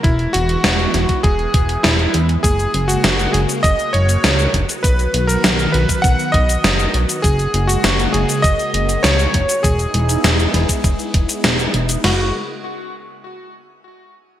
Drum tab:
CC |----------------|----------------|----------------|----------------|
HH |xxxxxxxxxxxxxxxx|xxxxxxxxxxxxxxxx|xxxxxxxxxxxxxxxx|xxxxxxxxxxxxxxxx|
SH |----------------|xx-xxx-xxx-xxx-x|xx-xxx-xxx-xxx-x|xx-xxx-xxx-xxx-x|
SD |----o-o-----o---|----o-------o---|----o-------o---|----o-------o---|
BD |o------oo-o-----|o-------o-----o-|o------oo-o-----|o-------o-----o-|

CC |----------------|x---------------|
HH |xxxxxxxxxxxxxxxx|----------------|
SH |xx-xxx-xxx-xxx-x|----------------|
SD |----o-o-----o---|o---------------|
BD |o------oo-o-----|----------------|